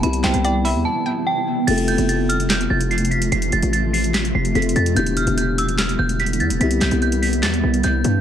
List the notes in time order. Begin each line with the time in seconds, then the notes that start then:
Already playing: G3 B3 E4
0.02 C2 C3 B3 E4 G4 B5, closed hi-hat
0.13 closed hi-hat
0.24 C2 C5 G5, snare, clap
0.34 C2, closed hi-hat
0.44 D5 G5, closed hi-hat
0.65 E5 B5, open hi-hat
0.75 E2
0.85 A5
1.06 G5
1.27 G5
1.67 F1 C3 F3 A3 F4 A4 A6, closed hi-hat, crash
1.78 closed hi-hat
1.88 G6, closed hi-hat
1.98 F1, closed hi-hat
2.09 A6, closed hi-hat
2.29 F6, closed hi-hat
2.40 closed hi-hat
2.50 G6, snare, clap, closed hi-hat
2.61 closed hi-hat
2.70 F1 A6
2.81 closed hi-hat
2.91 C7, closed hi-hat
2.98 closed hi-hat
3.05 closed hi-hat
3.11 B6, closed hi-hat
3.22 closed hi-hat
3.32 F1 C7, closed hi-hat
3.42 closed hi-hat
3.52 F1 A6, closed hi-hat
3.62 A1, closed hi-hat
3.73 A6, closed hi-hat
3.93 C7, open hi-hat
4.04 closed hi-hat
4.14 B6, snare, clap, closed hi-hat
4.25 closed hi-hat
4.35 F1 C7
4.45 closed hi-hat
4.54 F1 C3 A3 F4 A4 B6, closed hi-hat
4.62 closed hi-hat
4.69 closed hi-hat
4.76 F2 A6, closed hi-hat
4.86 closed hi-hat
4.94 E1 D3 G3 B3 E4 G4 G6, closed hi-hat
5.06 closed hi-hat
5.17 F6, closed hi-hat
5.27 E1, closed hi-hat
5.38 G6, closed hi-hat
5.58 E6, closed hi-hat
5.68 closed hi-hat
5.78 F6, snare, clap, closed hi-hat
5.89 closed hi-hat
5.99 E1 G6
6.09 closed hi-hat
6.20 B6, closed hi-hat
6.26 closed hi-hat
6.33 closed hi-hat
6.40 E2 A6, closed hi-hat
6.50 E1, closed hi-hat
6.59 C2 C3 B3 E4 G4 B6, closed hi-hat
6.71 closed hi-hat
6.81 C2 G6, snare, clap, closed hi-hat
6.91 C2, closed hi-hat
7.02 G6, closed hi-hat
7.12 closed hi-hat
7.22 B6, open hi-hat
7.33 closed hi-hat
7.43 E2 A6, snare, clap, closed hi-hat
7.54 closed hi-hat
7.64 C2
7.74 closed hi-hat
7.83 C2 G6, closed hi-hat
8.04 G2, closed hi-hat